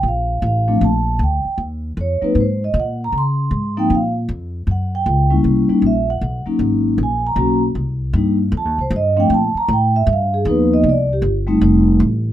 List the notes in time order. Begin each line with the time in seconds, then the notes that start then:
0.03 A#1
0.08 F5
0.42 A1
0.47 F5
0.68 F3 A3 C4 D4
0.81 A#1 A5
1.19 D2
1.23 G5
1.45 muted upright bass stroke
1.58 D#2
1.97 F2 C#5
2.22 F#3 A#3 C4 D#4 B4, muted upright bass stroke
2.35 G#2
2.40 C5
2.64 D#5
2.74 A#2
2.80 F#5
3.04 A#5
3.12 C#3
3.18 C6
3.51 G#2
3.77 F3 A#3 C4 D#4 G5
3.90 A#2
3.95 F5
4.29 F2
4.67 F#2
4.71 F#5
4.95 G5
5.06 C#2
5.30 G3 A#3 C#4 E4
5.44 C2
5.69 G3 A#3 C#4 D#4, muted upright bass stroke
5.82 A#1
5.86 E5
6.10 F#5
6.21 B1
6.46 F#3 A#3 C#4 D#4, muted upright bass stroke
6.59 G#1
6.98 A#1
7.03 G#5
7.27 A#5
7.36 B1 F#3 A#3 C#4 F#4
7.75 C2
8.13 G2 G3 A#3 D4 D#4
8.52 F2
8.57 A5
8.65 D#2
8.78 C2 C5
8.90 G2
8.96 D#5
9.17 F3 A3 C4 D4 G5
9.30 A#2
9.34 A5
9.55 A#5, muted upright bass stroke
9.68 A2
9.73 G5
9.96 E5
10.07 G2
10.13 F5
10.34 G#4
10.45 D#2 F3 A#3 B3 D#4
10.50 B4
10.74 D#5
10.84 C2
10.89 D5
11.13 G4
11.22 G1
11.47 G3 A3 C4 D#4
11.61 F1
12.00 A1